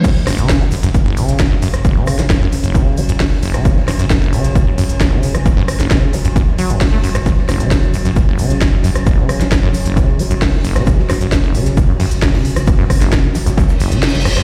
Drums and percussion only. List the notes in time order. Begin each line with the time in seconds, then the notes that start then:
0.04 kick, closed hi-hat, crash, shaker
0.16 snare
0.27 cross-stick, snare, open hi-hat, shaker
0.38 closed hi-hat
0.49 kick, snare, closed hi-hat, shaker
0.61 closed hi-hat
0.71 open hi-hat, shaker
0.83 snare, closed hi-hat
0.94 kick, closed hi-hat, shaker
1.17 open hi-hat, shaker
1.29 snare, closed hi-hat
1.39 kick, snare, closed hi-hat, shaker
1.62 snare, open hi-hat, shaker
1.74 cross-stick, snare, closed hi-hat
1.85 kick, closed hi-hat, shaker
2.06 cross-stick, open hi-hat, shaker
2.19 snare, closed hi-hat
2.30 kick, snare, closed hi-hat, shaker
2.52 snare, open hi-hat, shaker
2.63 closed hi-hat
2.75 kick, closed hi-hat, shaker
2.97 open hi-hat, shaker
3.09 closed hi-hat
3.20 kick, snare, closed hi-hat, open hi-hat
3.43 snare, open hi-hat, shaker
3.54 cross-stick, snare, closed hi-hat
3.65 kick, closed hi-hat, shaker
3.76 snare
3.88 cross-stick, snare, open hi-hat, shaker
3.99 closed hi-hat
4.10 kick, snare, closed hi-hat, shaker
4.22 closed hi-hat
4.33 open hi-hat, shaker
4.44 snare, closed hi-hat
4.55 kick, closed hi-hat, shaker
4.78 open hi-hat, shaker
4.89 snare, closed hi-hat
5.01 kick, snare, closed hi-hat, shaker
5.23 snare, open hi-hat, shaker
5.35 cross-stick, snare, closed hi-hat
5.46 kick, closed hi-hat, shaker
5.68 cross-stick, open hi-hat, shaker
5.80 snare, closed hi-hat
5.91 kick, snare, closed hi-hat, shaker
6.13 snare, open hi-hat, shaker
6.25 closed hi-hat
6.36 kick, closed hi-hat, shaker
6.58 open hi-hat, shaker
6.70 closed hi-hat
6.81 kick, snare, closed hi-hat, open hi-hat
7.04 snare, open hi-hat, shaker
7.15 cross-stick, snare, closed hi-hat
7.26 kick, closed hi-hat, shaker
7.38 snare
7.49 cross-stick, snare, open hi-hat, shaker
7.60 closed hi-hat
7.71 kick, snare, closed hi-hat, shaker
7.82 closed hi-hat
7.94 open hi-hat, shaker
8.05 snare, closed hi-hat
8.16 kick, closed hi-hat, shaker
8.38 open hi-hat, shaker
8.50 snare, closed hi-hat
8.61 kick, snare, closed hi-hat, shaker
8.83 snare, open hi-hat, shaker
8.95 cross-stick, snare, closed hi-hat
9.06 kick, closed hi-hat, shaker
9.29 cross-stick, open hi-hat, shaker
9.41 snare, closed hi-hat
9.52 kick, snare, closed hi-hat, shaker
9.74 snare, open hi-hat, shaker
9.85 closed hi-hat
9.97 kick, closed hi-hat, shaker
10.19 open hi-hat, shaker
10.31 closed hi-hat
10.42 kick, snare, closed hi-hat, open hi-hat
10.64 snare, open hi-hat, shaker
10.76 cross-stick, snare, closed hi-hat
10.87 kick, closed hi-hat, shaker
10.99 snare
11.10 cross-stick, snare, open hi-hat, shaker
11.21 closed hi-hat
11.32 kick, snare, closed hi-hat, shaker
11.44 closed hi-hat
11.54 open hi-hat, shaker
11.66 snare, closed hi-hat
11.77 kick, closed hi-hat, shaker
12.00 snare, open hi-hat
12.11 closed hi-hat
12.22 kick, snare, closed hi-hat, shaker
12.34 snare, open hi-hat
12.45 open hi-hat
12.56 cross-stick, snare, closed hi-hat, shaker
12.67 kick, closed hi-hat, shaker
12.90 kick, cross-stick, open hi-hat, shaker
13.01 snare, closed hi-hat
13.12 kick, snare, closed hi-hat, shaker
13.35 snare, open hi-hat, shaker
13.46 snare, closed hi-hat, shaker
13.57 kick, snare, closed hi-hat, shaker
13.69 snare, shaker
13.80 open hi-hat, shaker
13.92 closed hi-hat
14.03 snare, closed hi-hat, shaker
14.08 snare, shaker
14.14 snare, shaker
14.20 snare, shaker
14.25 cross-stick, open hi-hat, shaker
14.37 cross-stick, snare, closed hi-hat